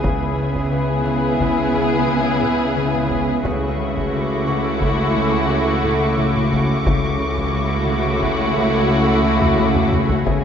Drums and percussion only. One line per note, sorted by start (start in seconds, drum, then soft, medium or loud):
0.04 taiko medium
0.56 taiko medium
1.41 taiko medium
2.43 taiko mid soft
2.77 taiko mid soft
2.94 taiko mid soft
3.11 taiko medium
3.45 taiko medium
3.97 taiko medium
4.82 taiko medium
5.84 taiko mid medium
6.19 taiko mid medium
6.36 taiko mid soft
6.53 taiko medium
6.87 taiko medium
7.38 taiko medium
8.22 taiko medium
9.42 taiko low-mid medium
9.59 taiko low-mid medium
9.76 taiko low-mid medium
9.92 taiko low-mid medium
10.09 taiko low medium
10.27 taiko medium